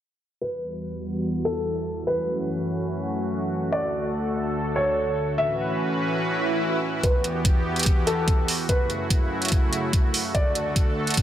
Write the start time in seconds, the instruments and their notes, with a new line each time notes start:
0.41 supersaw synth E2 E3 G3 B3 F#4, felt piano B4
1.45 felt piano A4
2.07 supersaw synth F#2 A3 C#4 F#4, felt piano B4
3.72 supersaw synth D2 D3 A4, felt piano D5
4.76 felt piano C#5
5.38 supersaw synth A2 E3 C#4 F#4 B4, felt piano E5
6.21 swell
7.03 supersaw synth E2 E3 B3 F#4 G4, felt piano B4, kick, closed hi-hat
7.24 closed hi-hat
7.45 kick, closed hi-hat
7.76 closed hi-hat
7.79 closed hi-hat
7.83 kick, closed hi-hat
7.86 closed hi-hat
8.07 felt piano A4, closed hi-hat
8.28 kick, closed hi-hat
8.48 open hi-hat
8.69 supersaw synth F#2 C#3 A3 E4, felt piano B4, kick, closed hi-hat
8.90 closed hi-hat
9.10 kick, closed hi-hat
9.42 closed hi-hat
9.45 closed hi-hat
9.48 kick, closed hi-hat
9.52 closed hi-hat
9.73 closed hi-hat
9.93 kick, closed hi-hat
10.14 open hi-hat
10.35 supersaw synth D2 D3 A4, felt piano D5, kick, closed hi-hat
10.55 closed hi-hat
10.76 kick, closed hi-hat
11.07 closed hi-hat
11.10 closed hi-hat
11.14 closed hi-hat
11.17 kick, closed hi-hat